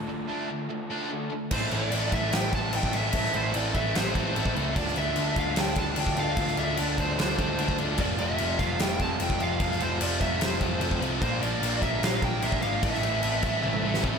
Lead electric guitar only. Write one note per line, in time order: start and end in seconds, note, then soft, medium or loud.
1.51 1.72 C5 loud
1.73 2.13 D5 loud
2.13 2.34 E5 medium
2.33 2.52 G5 loud
2.54 2.73 A5 loud
2.75 2.95 G5 loud
2.94 3.32 E5 medium
3.34 3.55 C5 medium
3.56 3.75 D5 medium
3.75 3.96 E5 medium
3.96 4.52 C5 loud
4.77 4.95 D5 loud
4.97 5.38 E5 loud
5.39 5.59 F5 loud
5.60 5.78 G5 loud
5.79 5.99 A5 loud
6.00 6.20 G5 loud
6.19 6.56 F5 loud
6.59 6.77 E5 loud
6.78 6.99 D5 medium
6.98 7.18 C5 medium
7.19 7.75 C5 medium
7.99 8.04 D5 loud
8.20 8.58 E5 medium
8.59 8.80 F5 medium
8.80 9.01 G5 loud
9.01 9.21 A5 loud
9.22 9.42 G5 medium
9.42 9.83 F5 medium
9.82 10.02 C5 medium
10.01 10.20 D5 medium
10.21 10.42 E5 medium
10.44 10.99 C5 medium
11.21 11.42 C5 loud
11.41 11.82 D5 loud
11.82 12.03 E5 medium
12.04 12.24 F5 medium
12.24 12.44 G5 medium
12.43 12.61 E5 loud
12.62 12.83 F5 medium
12.83 14.01 E5 loud